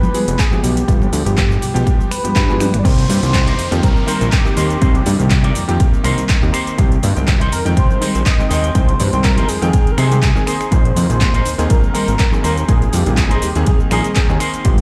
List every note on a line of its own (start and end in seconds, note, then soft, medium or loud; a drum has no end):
0.00 0.12 F3 loud
0.00 0.12 G#3 medium
0.00 0.12 B3 medium
0.00 0.12 G4 loud
0.00 0.41 B4 loud
0.00 muted conga medium
0.00 high conga medium
0.00 shaker soft
0.14 0.49 F3 medium
0.14 0.49 G#3 medium
0.14 0.49 B3 medium
0.14 0.49 G#4 medium
0.14 open hi-hat loud
0.14 shaker medium
0.28 0.37 F1 loud
0.28 closed hi-hat medium
0.28 shaker soft
0.39 0.65 G#4 loud
0.39 kick loud
0.39 clap loud
0.39 closed hi-hat medium
0.39 shaker soft
0.51 0.85 F3 medium
0.51 0.85 G#3 medium
0.51 0.85 B3 medium
0.51 0.85 G4 medium
0.51 low conga medium
0.51 shaker soft
0.63 0.84 B1 medium
0.63 2.11 G4 loud
0.63 open hi-hat medium
0.63 shaker medium
0.77 closed hi-hat medium
0.77 shaker soft
0.88 1.08 G1 loud
0.88 1.23 F3 medium
0.88 1.23 G#3 medium
0.88 1.23 B3 medium
0.88 1.23 G4 medium
0.88 kick loud
0.88 closed hi-hat medium
0.88 shaker soft
1.02 muted conga medium
1.02 low conga medium
1.02 shaker soft
1.13 1.24 D2 loud
1.13 open hi-hat loud
1.13 high conga medium
1.13 shaker medium
1.25 1.59 G1 loud
1.25 1.72 F3 medium
1.25 1.72 G#3 medium
1.25 1.72 B3 medium
1.25 1.72 G4 medium
1.25 closed hi-hat medium
1.25 shaker soft
1.38 kick loud
1.38 clap loud
1.38 closed hi-hat medium
1.38 shaker soft
1.50 muted conga medium
1.50 shaker soft
1.62 1.73 B1 soft
1.62 open hi-hat medium
1.62 shaker medium
1.74 1.84 B1 medium
1.74 2.08 F3 loud
1.74 2.08 G#3 medium
1.74 2.08 B3 medium
1.74 2.09 G4 loud
1.74 closed hi-hat medium
1.74 shaker soft
1.87 kick loud
1.87 closed hi-hat medium
1.87 muted conga medium
1.87 shaker soft
2.00 shaker soft
2.11 2.80 B4 loud
2.11 finger snap medium
2.11 open hi-hat loud
2.11 high conga medium
2.11 shaker medium
2.24 2.34 G2 soft
2.24 2.30 F3 medium
2.24 2.31 G#3 medium
2.24 2.31 B3 medium
2.24 2.31 G4 medium
2.24 closed hi-hat medium
2.24 shaker soft
2.36 2.75 G2 medium
2.36 kick loud
2.36 clap loud
2.36 closed hi-hat medium
2.36 high tom medium
2.36 shaker soft
2.48 2.55 F3 loud
2.48 2.55 G#3 medium
2.48 2.55 B3 medium
2.48 2.56 G#4 loud
2.48 high tom medium
2.48 shaker soft
2.59 2.67 F3 medium
2.59 2.68 G#3 medium
2.59 2.68 B3 medium
2.59 2.68 G4 medium
2.59 finger snap medium
2.59 open hi-hat medium
2.59 mid tom medium
2.59 shaker medium
2.74 2.83 G1 medium
2.74 finger snap medium
2.74 closed hi-hat medium
2.74 mid tom medium
2.74 shaker soft
2.78 2.86 D5 medium
2.84 3.05 C2 loud
2.84 3.19 D#3 medium
2.84 3.20 A#3 medium
2.84 3.20 C4 medium
2.84 3.20 G4 medium
2.84 3.85 C5 loud
2.84 kick loud
2.84 closed hi-hat medium
2.84 crash loud
2.84 downlifter medium
2.84 shaker soft
2.99 closed hi-hat soft
2.99 shaker soft
3.09 3.20 G2 loud
3.09 open hi-hat loud
3.09 low conga loud
3.09 shaker medium
3.22 3.55 C2 loud
3.22 3.69 D#3 medium
3.22 3.69 A#3 medium
3.22 3.69 C4 medium
3.22 3.69 G4 medium
3.22 closed hi-hat soft
3.22 shaker soft
3.33 muted clean electric guitar stroke soft
3.33 kick loud
3.33 clap loud
3.33 closed hi-hat medium
3.33 low conga medium
3.33 shaker soft
3.46 3.65 D#4 medium
3.46 3.65 G4 medium
3.46 3.65 A#4 medium
3.46 3.66 C5 loud
3.46 closed hi-hat medium
3.46 shaker soft
3.59 3.69 F2 soft
3.59 open hi-hat medium
3.59 shaker medium
3.71 3.81 F2 medium
3.71 4.05 D#3 loud
3.71 4.05 A#3 medium
3.71 4.05 C4 medium
3.71 4.05 G4 loud
3.71 closed hi-hat medium
3.71 shaker soft
3.82 3.94 C2 medium
3.82 4.34 A#4 loud
3.82 muted clean electric guitar stroke soft
3.82 kick loud
3.82 closed hi-hat medium
3.82 shaker soft
3.96 high conga medium
3.96 shaker soft
4.07 4.42 D#3 medium
4.07 4.43 A#3 medium
4.07 4.43 C4 medium
4.07 4.26 D#4 loud
4.07 4.27 G4 loud
4.07 4.27 A#4 loud
4.07 4.43 A#4 medium
4.07 4.27 C5 loud
4.07 open hi-hat loud
4.07 shaker medium
4.21 4.30 A#1 loud
4.21 closed hi-hat soft
4.21 shaker soft
4.32 4.56 G4 medium
4.32 kick loud
4.32 clap loud
4.32 closed hi-hat medium
4.32 shaker soft
4.45 4.79 D#3 medium
4.45 4.79 A#3 medium
4.45 4.79 C4 medium
4.45 4.79 G4 medium
4.45 muted clean electric guitar stroke medium
4.45 muted conga medium
4.45 shaker soft
4.56 4.77 D#2 medium
4.56 4.95 D#4 loud
4.56 4.95 G4 medium
4.56 5.51 G4 medium
4.56 4.95 A#4 loud
4.56 4.95 C5 loud
4.56 open hi-hat medium
4.56 shaker medium
4.70 closed hi-hat soft
4.70 shaker soft
4.81 5.02 C2 loud
4.81 5.16 D#3 medium
4.81 5.16 A#3 medium
4.81 5.16 C4 medium
4.81 5.17 G4 medium
4.81 kick loud
4.81 closed hi-hat medium
4.81 shaker soft
4.95 closed hi-hat soft
4.95 muted conga medium
4.95 shaker soft
5.06 5.17 G2 loud
5.06 open hi-hat loud
5.06 high conga medium
5.06 low conga loud
5.06 shaker medium
5.19 5.52 C2 loud
5.19 5.65 D#3 medium
5.19 5.65 A#3 medium
5.19 5.66 C4 medium
5.19 5.66 G4 medium
5.19 closed hi-hat soft
5.19 shaker soft
5.30 muted clean electric guitar stroke soft
5.30 kick loud
5.30 clap loud
5.30 closed hi-hat medium
5.30 low conga medium
5.30 shaker soft
5.43 5.62 D#4 medium
5.43 5.62 G4 medium
5.43 5.62 A#4 medium
5.43 5.62 D5 loud
5.43 closed hi-hat medium
5.43 muted conga medium
5.43 shaker soft
5.55 5.66 F2 soft
5.55 open hi-hat loud
5.55 shaker medium
5.68 5.78 F2 medium
5.68 6.01 D#3 loud
5.68 6.02 A#3 medium
5.68 6.02 C4 medium
5.68 6.02 G4 loud
5.68 closed hi-hat medium
5.68 shaker soft
5.79 muted clean electric guitar stroke soft
5.79 kick loud
5.79 closed hi-hat medium
5.79 muted conga medium
5.79 shaker soft
5.94 shaker soft
6.03 6.15 C2 medium
6.03 6.39 D#3 medium
6.03 6.39 A#3 medium
6.03 6.39 C4 medium
6.03 6.23 D#4 loud
6.03 6.23 G4 loud
6.03 6.24 A#4 loud
6.03 6.40 A#4 medium
6.03 6.24 C5 loud
6.03 finger snap medium
6.03 open hi-hat loud
6.03 high conga medium
6.03 shaker medium
6.18 closed hi-hat soft
6.18 shaker soft
6.29 kick loud
6.29 clap loud
6.29 closed hi-hat medium
6.29 shaker soft
6.42 6.52 D#2 medium
6.42 6.75 D#3 medium
6.42 6.76 A#3 medium
6.42 6.76 C4 medium
6.42 6.76 G4 medium
6.42 muted clean electric guitar stroke medium
6.42 shaker soft
6.53 6.78 D#4 loud
6.53 6.78 G4 loud
6.53 6.78 A#4 loud
6.53 6.79 C5 loud
6.53 finger snap medium
6.53 open hi-hat medium
6.53 shaker medium
6.67 closed hi-hat soft
6.67 shaker soft
6.77 6.99 C2 loud
6.77 7.13 D#3 medium
6.77 7.13 G#3 medium
6.77 7.13 C4 medium
6.77 7.13 G4 medium
6.77 kick loud
6.77 closed hi-hat medium
6.77 shaker soft
6.92 closed hi-hat soft
6.92 shaker soft
7.03 7.14 G2 loud
7.03 open hi-hat loud
7.03 low conga loud
7.03 shaker medium
7.16 7.49 C2 loud
7.16 7.62 D#3 medium
7.16 7.62 G#3 medium
7.16 7.62 C4 medium
7.16 7.63 G5 medium
7.16 closed hi-hat soft
7.16 shaker soft
7.26 muted clean electric guitar stroke soft
7.26 kick loud
7.26 clap loud
7.26 closed hi-hat medium
7.26 low conga medium
7.26 shaker soft
7.40 7.58 D#4 loud
7.40 7.59 G4 medium
7.40 7.59 G#4 medium
7.40 7.59 C5 loud
7.40 closed hi-hat medium
7.40 shaker soft
7.52 7.63 F2 soft
7.52 7.63 A#4 loud
7.52 open hi-hat loud
7.52 shaker medium
7.65 7.75 F2 medium
7.65 7.99 D#3 loud
7.65 7.99 G#3 medium
7.65 7.99 C4 medium
7.65 7.99 G5 loud
7.65 closed hi-hat medium
7.65 shaker soft
7.76 7.88 C2 medium
7.76 8.27 C5 loud
7.76 muted clean electric guitar stroke soft
7.76 kick loud
7.76 closed hi-hat medium
7.76 shaker soft
7.90 high conga medium
7.90 shaker soft
8.01 8.36 D#3 medium
8.01 8.36 G#3 medium
8.01 8.36 C4 medium
8.01 8.20 D#4 loud
8.01 8.20 G4 loud
8.01 8.21 G#4 loud
8.01 8.21 C5 loud
8.01 open hi-hat loud
8.01 shaker medium
8.15 8.24 A#1 loud
8.15 closed hi-hat soft
8.15 shaker soft
8.26 8.76 D#5 loud
8.26 kick loud
8.26 clap loud
8.26 closed hi-hat medium
8.26 shaker soft
8.38 8.72 D#3 medium
8.38 8.73 G#3 medium
8.38 8.73 C4 medium
8.38 8.73 G5 medium
8.38 muted clean electric guitar stroke medium
8.38 muted conga medium
8.38 shaker soft
8.49 8.71 D#2 medium
8.49 8.88 D#4 loud
8.49 8.88 G4 loud
8.49 8.89 G#4 loud
8.49 8.89 C5 loud
8.49 open hi-hat medium
8.49 shaker medium
8.64 closed hi-hat soft
8.64 shaker soft
8.74 8.95 C2 loud
8.74 9.10 D#3 medium
8.74 9.10 G#3 medium
8.74 9.10 C4 medium
8.74 8.99 C5 loud
8.74 9.10 G5 medium
8.74 kick loud
8.74 closed hi-hat medium
8.74 shaker soft
8.89 closed hi-hat soft
8.89 muted conga medium
8.89 shaker soft
8.99 9.11 G2 loud
8.99 9.25 C5 loud
8.99 open hi-hat loud
8.99 high conga medium
8.99 low conga medium
8.99 shaker medium
9.13 9.45 C2 loud
9.13 9.59 D#3 medium
9.13 9.59 G#3 medium
9.13 9.59 C4 medium
9.13 9.60 G5 medium
9.13 closed hi-hat soft
9.13 shaker soft
9.24 9.50 A#4 loud
9.24 muted clean electric guitar stroke soft
9.24 kick loud
9.24 clap loud
9.24 closed hi-hat medium
9.24 low conga medium
9.24 shaker soft
9.36 9.55 D#4 medium
9.36 9.55 G4 medium
9.36 9.56 G#4 medium
9.36 9.56 C5 loud
9.36 closed hi-hat medium
9.36 muted conga medium
9.36 shaker soft
9.49 9.60 F2 soft
9.49 9.91 G#4 loud
9.49 open hi-hat loud
9.49 shaker medium
9.62 9.71 F2 medium
9.62 9.95 D#3 loud
9.62 9.95 G#3 medium
9.62 9.96 C4 medium
9.62 9.96 G5 loud
9.62 closed hi-hat medium
9.62 shaker soft
9.72 muted clean electric guitar stroke soft
9.72 kick loud
9.72 closed hi-hat medium
9.72 muted conga medium
9.72 shaker soft
9.87 closed hi-hat soft
9.87 shaker soft
9.92 10.00 A#4 medium
9.97 10.32 C3 loud
9.97 10.17 D#4 loud
9.97 10.17 G4 loud
9.97 10.74 G#4 loud
9.97 10.17 G#4 loud
9.97 10.18 C5 loud
9.97 finger snap medium
9.97 open hi-hat loud
9.97 high conga medium
9.97 shaker medium
10.11 10.17 D#3 medium
10.11 10.18 G#3 medium
10.11 10.18 C4 medium
10.11 10.18 G4 medium
10.11 closed hi-hat soft
10.11 shaker soft
10.23 kick loud
10.23 clap loud
10.23 closed hi-hat medium
10.23 shaker soft
10.35 10.42 D#3 loud
10.35 10.42 G#3 medium
10.35 10.42 C4 medium
10.35 10.42 G#4 loud
10.35 muted clean electric guitar stroke medium
10.35 shaker soft
10.46 10.54 D#3 medium
10.46 10.54 A#3 medium
10.46 10.55 C4 medium
10.46 11.07 D#4 medium
10.46 11.07 G#4 medium
10.46 10.55 G#4 medium
10.46 11.07 A#4 medium
10.46 11.08 C5 loud
10.46 finger snap medium
10.46 open hi-hat medium
10.46 shaker medium
10.61 finger snap medium
10.61 closed hi-hat soft
10.61 shaker soft
10.71 10.92 A#1 loud
10.71 11.06 D#3 medium
10.71 11.06 A#3 medium
10.71 11.07 C4 medium
10.71 11.07 G#4 medium
10.71 11.72 C5 loud
10.71 kick loud
10.71 closed hi-hat medium
10.71 shaker soft
10.85 closed hi-hat soft
10.85 shaker soft
10.96 11.07 F2 loud
10.96 open hi-hat loud
10.96 low conga medium
10.96 shaker medium
11.09 11.42 A#1 loud
11.09 11.56 D#3 medium
11.09 11.56 A#3 medium
11.09 11.56 C4 medium
11.09 11.56 G#4 medium
11.09 closed hi-hat soft
11.09 shaker soft
11.20 muted clean electric guitar stroke soft
11.20 kick loud
11.20 clap loud
11.20 closed hi-hat medium
11.20 low conga medium
11.20 shaker soft
11.33 11.52 D#4 medium
11.33 11.52 G#4 medium
11.33 11.52 A#4 medium
11.33 11.53 C5 loud
11.33 closed hi-hat medium
11.33 shaker soft
11.46 11.56 D#2 soft
11.46 open hi-hat loud
11.46 shaker medium
11.58 11.68 D#2 medium
11.58 11.92 D#3 loud
11.58 11.92 A#3 medium
11.58 11.92 C4 medium
11.58 11.92 G#4 loud
11.58 closed hi-hat medium
11.58 shaker soft
11.69 11.81 A#1 medium
11.69 12.44 A#4 loud
11.69 muted clean electric guitar stroke soft
11.69 kick loud
11.69 closed hi-hat medium
11.69 shaker soft
11.83 high conga medium
11.83 shaker soft
11.94 12.29 D#3 medium
11.94 12.29 A#3 medium
11.94 12.29 C4 medium
11.94 12.13 D#4 loud
11.94 12.14 G#4 loud
11.94 12.30 A#4 medium
11.94 12.14 A#4 loud
11.94 12.14 C5 loud
11.94 open hi-hat loud
11.94 shaker medium
12.08 12.17 G#1 loud
12.08 closed hi-hat soft
12.08 shaker soft
12.19 kick loud
12.19 clap loud
12.19 closed hi-hat medium
12.19 shaker soft
12.32 12.65 D#3 medium
12.32 12.66 A#3 medium
12.32 12.66 C4 medium
12.32 12.66 G#4 medium
12.32 muted clean electric guitar stroke medium
12.32 muted conga medium
12.32 shaker soft
12.43 12.64 D#2 medium
12.43 12.81 D#4 loud
12.43 12.82 G#4 loud
12.43 12.82 A#4 medium
12.43 12.56 A#4 medium
12.43 12.82 C5 loud
12.43 open hi-hat medium
12.43 shaker medium
12.57 closed hi-hat soft
12.57 shaker soft
12.68 12.89 A#1 loud
12.68 13.03 D#3 medium
12.68 13.03 A#3 medium
12.68 13.03 C4 medium
12.68 13.04 G#4 medium
12.68 12.95 G#4 loud
12.68 kick loud
12.68 closed hi-hat medium
12.68 shaker soft
12.82 closed hi-hat soft
12.82 muted conga medium
12.82 shaker soft
12.93 13.04 F2 loud
12.93 13.18 G4 medium
12.93 open hi-hat loud
12.93 high conga medium
12.93 low conga medium
12.93 shaker medium
13.06 13.39 A#1 loud
13.06 13.52 D#3 medium
13.06 13.52 A#3 medium
13.06 13.53 C4 medium
13.06 13.53 G#4 medium
13.06 closed hi-hat soft
13.06 shaker soft
13.16 13.45 G#4 medium
13.16 muted clean electric guitar stroke soft
13.16 kick loud
13.16 clap loud
13.16 closed hi-hat medium
13.16 low conga medium
13.16 shaker soft
13.29 13.48 D#4 medium
13.29 13.49 G#4 medium
13.29 13.49 A#4 medium
13.29 13.49 C5 loud
13.29 closed hi-hat medium
13.29 muted conga medium
13.29 shaker soft
13.42 13.53 D#2 soft
13.42 13.67 G4 medium
13.42 open hi-hat medium
13.42 shaker medium
13.55 13.65 D#2 medium
13.55 13.89 D#3 loud
13.55 13.89 A#3 medium
13.55 13.89 C4 medium
13.55 13.89 G#4 loud
13.55 closed hi-hat medium
13.55 shaker soft
13.65 13.79 G#4 medium
13.65 muted clean electric guitar stroke soft
13.65 kick loud
13.65 closed hi-hat medium
13.65 muted conga medium
13.65 shaker soft
13.80 shaker soft
13.90 14.02 A#1 medium
13.90 14.26 D#3 medium
13.90 14.27 A#3 medium
13.90 14.27 C4 medium
13.90 14.10 D#4 loud
13.90 14.10 G#4 loud
13.90 14.38 G#4 medium
13.90 14.10 A#4 loud
13.90 14.27 A#4 loud
13.90 14.11 C5 loud
13.90 finger snap medium
13.90 open hi-hat loud
13.90 high conga medium
13.90 shaker medium
14.04 closed hi-hat soft
14.04 shaker soft
14.16 14.28 C5 medium
14.16 kick loud
14.16 clap loud
14.16 closed hi-hat medium
14.16 shaker soft
14.28 14.39 D#2 medium
14.28 14.63 D#3 medium
14.28 14.63 A#3 medium
14.28 14.63 C4 medium
14.28 14.63 G#4 medium
14.28 muted clean electric guitar stroke medium
14.28 shaker soft
14.39 14.65 D#4 loud
14.39 14.65 G#4 loud
14.39 14.65 A#4 loud
14.39 14.65 C5 loud
14.39 finger snap medium
14.39 open hi-hat medium
14.39 shaker medium
14.54 closed hi-hat soft
14.54 shaker soft
14.65 14.81 G1 loud
14.65 14.81 F3 medium
14.65 14.81 G#3 medium
14.65 14.81 B3 medium
14.65 14.81 G4 medium
14.65 kick loud
14.65 closed hi-hat medium
14.65 shaker soft